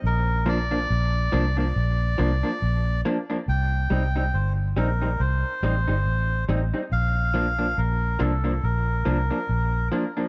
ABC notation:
X:1
M:4/4
L:1/16
Q:"Swing 16ths" 1/4=70
K:Cdor
V:1 name="Melodica"
B2 d4- d d6- d z2 | g4 c2 B2 c6 z2 | f4 B2 A2 B6 z2 |]
V:2 name="Clean electric guitar"
z2 [F,B,D] [F,B,D] z2 [F,B,D] [F,B,D] z2 [F,B,D] [F,B,D] z2 [F,B,D] [F,B,D] | z2 [G,CE] [G,CE] z2 [G,CE] [G,CE] z2 [G,CE] [G,CE] z2 [G,CE] [G,CE] | z2 [F,B,D] [F,B,D] z2 [F,B,D] [F,B,D] z2 [F,B,D] [F,B,D] z2 [F,B,D] [F,B,D] |]
V:3 name="Fingered electric bass" clef=bass
B,,,4 B,,,2 C,,2 B,,,2 C,, z B,,,2 z2 | C,,2 C,,2 G,,,2 B,,,2 C,, z A,,, G,,, A,,,2 A,,, z | B,,,4 B,,,2 C,,2 B,,,2 C,, z B,,,2 z2 |]